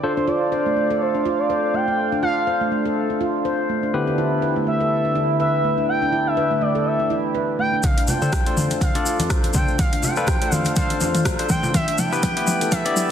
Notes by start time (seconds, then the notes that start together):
Already playing: D5
0.03 D4 F4 A4 C5 F5
0.17 D4 C5
0.27 F4 D5
0.52 C5
0.66 A3
0.77 A3
0.90 A4
1.01 C5
1.15 D4
1.25 F4
1.39 D5
1.50 C5
1.74 A3 G5
1.88 D4
2.12 D4
2.23 F4 F5
2.47 C5
2.61 A3
2.72 A3
2.85 A4
3.10 D4
3.21 F4
3.45 C5
3.69 A3
3.83 D4
3.94 D3 B3 E4 G4 B4 E5 G5
4.07 D4
4.18 E4
4.42 B4
4.56 A3
4.67 A3 E5
4.81 A4
5.05 D4
5.15 E4
5.40 B4 E5
5.64 A3
5.78 D4
5.89 D5 G5
6.02 D4
6.12 E4
6.27 E5
6.37 B4
6.51 A3
6.61 A3 D5
6.75 A4
6.86 E5
7.00 D4
7.10 E4
7.35 B4
7.59 A3 G5
7.73 D4
7.83 D4 A4 D5 F5, kick, closed hi-hat, mid tom, muted conga, shaker
7.97 D4 F5, closed hi-hat
8.08 F4 G5, muted conga, low conga, shaker
8.22 D4 F4 A4 C5, mid tom, shaker
8.32 kick, cross-stick, closed hi-hat, muted conga, high conga, shaker
8.46 A3 D4 F4 A4 C5, closed hi-hat
8.57 A3, mid tom, high conga, shaker
8.70 A4, closed hi-hat, muted conga, shaker
8.81 F5, kick, closed hi-hat, mid tom, shaker
8.95 D4 F4 A4 D5, closed hi-hat, muted conga
9.06 F4, shaker
9.19 closed hi-hat, muted conga, high conga, shaker
9.30 C5, kick, cross-stick, closed hi-hat, shaker
9.43 closed hi-hat, high conga
9.54 A3 D4 F4 A4 C5 G5, kick, mid tom, muted conga, high conga, low conga, shaker
9.68 D4, shaker
9.78 D5 F5, kick, closed hi-hat, mid tom, muted conga, shaker
9.93 D4 F5, closed hi-hat
10.03 F4 G5, muted conga, high conga, low conga, shaker
10.16 D4 F4 A4 B4, shaker
10.27 C5, kick, cross-stick, closed hi-hat, muted conga, high conga, shaker
10.41 A3 D4 F4 A4 C5, closed hi-hat
10.52 A3 F5, mid tom, high conga, shaker
10.65 A4, closed hi-hat, muted conga, shaker
10.76 D4 F4 A4 C5 F5, kick, closed hi-hat, mid tom, shaker
10.90 D4, closed hi-hat, muted conga
11.00 F4, high conga, shaker
11.15 closed hi-hat, mid tom, muted conga, shaker
11.25 C5, kick, cross-stick, closed hi-hat, shaker
11.39 D4 F4 A4 C5, closed hi-hat
11.49 A3 G5, kick, mid tom, muted conga, shaker
11.63 D4, low conga, shaker
11.74 D3 E4 B4 E5 G5, kick, closed hi-hat, mid tom, muted conga, shaker
11.87 D4 E5, closed hi-hat
11.98 E4 G5, mid tom, muted conga, low conga, shaker
12.12 B3 E4 G4 B4, shaker
12.23 B4, kick, closed hi-hat, mid tom, muted conga, high conga, shaker
12.37 A3 B3 E4 G4 B4, closed hi-hat
12.47 A3, mid tom, high conga, shaker
12.61 A4, closed hi-hat, muted conga, shaker
12.71 E5, kick, closed hi-hat, mid tom, shaker
12.85 B3 D4 E4 G4 D5, closed hi-hat, muted conga
12.96 E4, mid tom, shaker